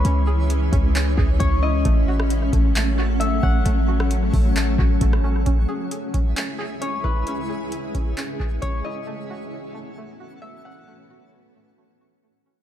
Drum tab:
HH |x---x-x-x---x---|x---x-x-x---x---|x---x-o-x---x---|x---x-x-x---x---|
CP |--------x-------|--------x-------|--------x-------|--------x-------|
SD |----------------|---r------------|---r---------r--|----------------|
BD |------o---o-o---|o-----o-------o-|------o---o-o---|o-----o-------o-|

HH |x---x-x-x---x---|----------------|----------------|
CP |--------x-------|----------------|----------------|
SD |----------------|----------------|----------------|
BD |------o---o-o---|----------------|----------------|